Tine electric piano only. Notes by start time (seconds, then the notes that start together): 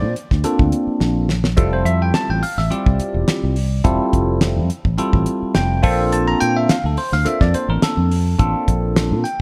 Already playing: A#3 C4 D4 F4 C5 D5
0.44 A#3 C4 D4 F4 A4
1.57 G3 C4 E4 F4 A4
1.73 C5
1.85 E5
2.02 G5
2.15 A5
2.30 G5
2.43 F5
2.58 E5
2.70 G3 C4 E4 F4 G4 D5
3.84 G3 C4 E4 F4 A4
4.98 G3 C4 E4 F4 A4
5.55 G5
5.82 A#3 C4 D4 F4 A4
6.13 A5
6.28 A#5
6.41 G5
6.57 E5
6.70 F5
6.86 A4
6.98 C5
7.13 F5
7.25 A#3 C4 D4 F4 A4 E5
7.42 D5
7.55 C5
7.70 A#4
7.83 A4
8.38 A#3 C4 D4 F4 A4
9.24 G5